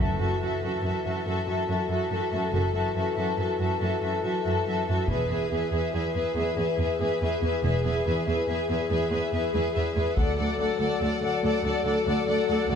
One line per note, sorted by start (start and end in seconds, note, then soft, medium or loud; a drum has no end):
0.00 0.18 F#1 soft
0.00 0.59 F#2 soft
0.00 5.05 E3 soft
0.00 0.17 F#4 soft
0.00 0.19 A4 soft
0.00 5.05 A4 soft
0.00 0.20 E5 soft
0.19 0.28 F#2 soft
0.19 0.40 F#4 soft
0.19 0.41 A4 soft
0.19 0.42 E5 soft
0.41 0.50 F#2 soft
0.41 0.60 F#4 soft
0.41 0.63 A4 soft
0.41 0.63 E5 soft
0.62 0.70 F#2 soft
0.62 0.81 F#4 soft
0.62 0.85 A4 soft
0.62 0.83 E5 soft
0.83 0.91 F#2 soft
0.83 1.03 F#4 soft
0.83 1.04 E5 soft
0.87 1.07 A4 soft
1.04 1.12 F#2 soft
1.04 1.25 F#4 soft
1.04 1.28 A4 soft
1.04 1.25 E5 soft
1.26 1.34 F#2 soft
1.26 1.46 F#4 soft
1.26 1.48 A4 soft
1.26 1.45 E5 soft
1.46 1.55 F#2 soft
1.46 1.67 F#4 soft
1.46 1.70 A4 soft
1.46 1.67 E5 soft
1.68 1.76 F#2 soft
1.68 1.90 F#4 soft
1.68 1.89 E5 soft
1.72 1.92 A4 soft
1.89 1.97 F#2 soft
1.89 2.10 F#4 soft
1.89 2.10 E5 soft
1.93 2.12 A4 soft
2.10 2.18 F#2 soft
2.10 2.31 F#4 soft
2.10 2.33 A4 soft
2.10 2.31 E5 soft
2.32 2.40 F#2 soft
2.32 2.51 F#4 soft
2.32 2.54 A4 soft
2.32 2.52 E5 soft
2.52 2.73 F#1 soft
2.52 2.61 F#2 soft
2.52 2.72 F#4 soft
2.52 2.76 A4 soft
2.52 2.72 E5 soft
2.73 2.81 F#2 soft
2.73 2.93 F#4 soft
2.73 2.94 E5 soft
2.78 2.96 A4 soft
2.94 3.02 F#2 soft
2.94 3.16 F#4 soft
2.94 3.18 A4 soft
2.94 3.15 E5 soft
3.16 3.25 F#2 soft
3.16 3.37 F#4 soft
3.16 3.39 A4 soft
3.16 3.37 E5 soft
3.38 3.46 F#2 soft
3.38 3.58 F#4 soft
3.38 3.60 A4 soft
3.38 3.59 E5 soft
3.60 3.68 F#2 soft
3.60 3.79 F#4 soft
3.60 3.80 A4 soft
3.60 3.80 E5 soft
3.80 3.89 F#2 soft
3.80 3.99 F#4 soft
3.80 4.03 A4 soft
3.80 4.01 E5 soft
4.01 4.10 F#2 soft
4.01 4.21 F#4 soft
4.01 4.22 E5 soft
4.06 4.25 A4 soft
4.23 4.32 F#2 soft
4.23 4.42 F#4 soft
4.23 4.46 A4 soft
4.23 4.42 E5 soft
4.43 4.54 F#2 soft
4.43 4.64 F#4 soft
4.43 4.65 E5 soft
4.48 4.68 A4 soft
4.65 4.75 F#2 soft
4.65 4.86 F#4 soft
4.65 4.87 E5 soft
4.70 4.89 A4 soft
4.87 4.96 F#2 soft
4.87 5.09 F#4 soft
4.87 5.10 A4 soft
4.87 5.08 E5 soft
5.08 5.28 E1 soft
5.08 5.17 E2 soft
5.08 10.00 E3 soft
5.08 5.27 G#4 soft
5.08 10.00 G#4 soft
5.08 5.31 B4 soft
5.08 5.28 E5 soft
5.08 taiko soft
5.28 5.39 E2 soft
5.28 5.49 G#4 soft
5.28 5.51 E5 soft
5.34 5.53 B4 soft
5.50 5.60 E2 soft
5.50 5.69 G#4 soft
5.50 5.73 E5 soft
5.55 5.74 B4 soft
5.71 5.80 E2 soft
5.71 5.91 G#4 soft
5.71 5.94 E5 soft
5.76 5.94 B4 soft
5.93 6.02 E2 soft
5.93 6.13 G#4 soft
5.93 6.15 B4 soft
5.93 6.15 E5 soft
6.14 6.24 E2 soft
6.14 6.33 G#4 soft
6.14 6.37 B4 soft
6.14 6.37 E5 soft
6.35 6.44 E2 soft
6.35 6.55 G#4 soft
6.35 6.58 E5 soft
6.40 6.59 B4 soft
6.56 6.66 E2 soft
6.56 6.76 G#4 soft
6.56 6.79 E5 soft
6.61 6.80 B4 soft
6.77 6.86 E2 soft
6.77 6.98 G#4 soft
6.81 7.00 B4 soft
6.81 7.01 E5 soft
6.99 7.08 E2 soft
6.99 7.20 G#4 soft
6.99 7.21 B4 soft
6.99 7.22 E5 soft
7.21 7.30 E2 soft
7.21 7.40 G#4 soft
7.21 7.43 B4 soft
7.21 7.43 E5 soft
7.41 7.50 E2 soft
7.41 7.62 G#4 soft
7.41 7.63 E5 soft
7.46 7.64 B4 soft
7.63 7.83 E1 soft
7.63 7.71 E2 soft
7.63 7.83 G#4 soft
7.63 7.84 B4 soft
7.63 7.85 E5 soft
7.84 7.93 E2 soft
7.84 8.05 G#4 soft
7.84 8.06 B4 soft
7.84 8.05 E5 soft
8.07 8.15 E2 soft
8.07 8.27 G#4 soft
8.07 8.27 B4 soft
8.07 8.25 E5 soft
8.26 8.35 E2 soft
8.26 8.47 G#4 soft
8.26 8.48 B4 soft
8.26 8.47 E5 soft
8.48 8.57 E2 soft
8.48 8.68 G#4 soft
8.48 8.69 B4 soft
8.48 8.69 E5 soft
8.70 8.78 E2 soft
8.70 8.89 G#4 soft
8.70 8.89 B4 soft
8.70 8.90 E5 soft
8.90 8.98 E2 medium
8.90 9.09 G#4 soft
8.90 9.10 B4 soft
8.90 9.12 E5 soft
9.10 9.19 E2 soft
9.10 9.31 G#4 soft
9.10 9.32 B4 soft
9.10 9.33 E5 soft
9.32 9.41 E2 soft
9.32 9.52 G#4 soft
9.32 9.53 B4 soft
9.32 9.53 E5 soft
9.53 9.62 E2 soft
9.53 9.72 G#4 soft
9.53 9.74 B4 soft
9.53 9.74 E5 soft
9.73 9.84 E2 medium
9.73 9.93 G#4 soft
9.73 9.96 B4 soft
9.73 9.96 E5 soft
9.94 10.05 E2 soft
9.94 10.16 G#4 soft
9.94 10.17 B4 soft
9.94 10.17 E5 soft
10.15 10.25 D2 soft
10.15 10.37 D2 medium
10.15 12.75 F#3 medium
10.15 10.36 A4 soft
10.15 12.75 A4 medium
10.15 10.37 F#5 soft
10.15 taiko soft
10.20 10.37 D5 soft
10.37 10.47 D2 soft
10.37 10.57 A4 soft
10.37 10.59 D5 soft
10.37 10.59 F#5 soft
10.58 10.67 D2 soft
10.58 10.78 A4 soft
10.58 10.79 D5 soft
10.58 10.80 F#5 soft
10.79 10.88 D2 medium
10.79 10.98 A4 soft
10.79 11.01 D5 soft
10.79 11.01 F#5 soft
10.99 11.09 D2 soft
10.99 11.21 A4 soft
10.99 11.22 F#5 soft
11.04 11.23 D5 soft
11.22 11.31 D2 soft
11.22 11.42 A4 soft
11.22 11.44 D5 soft
11.22 11.44 F#5 soft
11.43 11.51 D2 medium
11.43 11.62 A4 soft
11.43 11.65 D5 soft
11.43 11.65 F#5 soft
11.63 11.73 D2 medium
11.63 11.84 A4 soft
11.63 11.86 D5 soft
11.63 11.86 F#5 soft
11.85 11.93 D2 soft
11.85 12.05 A4 soft
11.85 12.07 D5 soft
11.85 12.05 F#5 soft
12.06 12.15 D2 medium
12.06 12.27 A4 soft
12.06 12.27 D5 soft
12.06 12.27 F#5 soft
12.27 12.35 D2 soft
12.27 12.48 A4 soft
12.27 12.48 D5 soft
12.27 12.47 F#5 soft
12.48 12.57 D2 soft
12.48 12.69 A4 soft
12.48 12.69 D5 soft
12.48 12.69 F#5 soft
12.69 12.75 D2 medium
12.69 12.75 A4 soft
12.69 12.75 D5 soft
12.69 12.75 F#5 soft